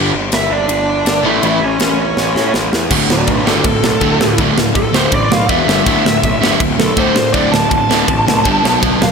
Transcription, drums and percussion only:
0.32 snare loud
0.32 ride medium
0.69 ride medium
1.06 snare loud
1.06 ride medium
1.43 ride medium
1.80 snare loud
1.80 ride medium
2.17 snare medium
2.36 snare medium
2.54 snare medium
2.73 snare loud
2.91 kick loud
2.91 crash loud
2.91 crash medium
3.10 snare loud
3.27 kick medium
3.27 crash medium
3.47 snare loud
3.64 kick loud
3.64 crash medium
3.84 snare loud
4.01 kick medium
4.01 crash medium
4.21 snare loud
4.38 kick loud
4.38 crash medium
4.58 snare loud
4.75 kick loud
4.75 crash medium
4.94 snare loud
5.12 kick loud
5.12 crash medium
5.32 snare loud
5.49 kick loud
5.49 crash medium
5.69 snare loud
5.86 kick loud
5.86 crash medium
6.06 snare loud
6.24 kick loud
6.24 crash medium
6.43 snare loud
6.60 kick loud
6.60 crash medium
6.80 snare loud
6.97 kick loud
6.97 crash medium
7.16 snare loud
7.34 kick loud
7.34 crash medium
7.54 snare loud
7.71 kick loud
7.71 crash medium
7.91 snare loud
8.08 kick loud
8.08 crash medium
8.28 snare loud
8.45 kick loud
8.45 crash medium
8.65 snare loud
8.83 kick loud
8.83 crash medium
9.02 snare loud

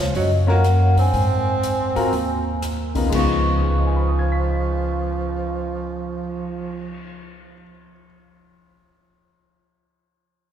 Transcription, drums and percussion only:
0.15 open hi-hat soft
0.64 cross-stick medium
0.64 closed hi-hat soft
0.97 open hi-hat soft
1.14 open hi-hat soft
1.63 closed hi-hat soft
1.96 open hi-hat soft
2.13 open hi-hat soft
2.62 cross-stick medium
2.62 closed hi-hat soft
2.95 kick soft
2.95 open hi-hat soft
3.12 kick soft
3.12 crash medium
3.45 cymbal swell soft

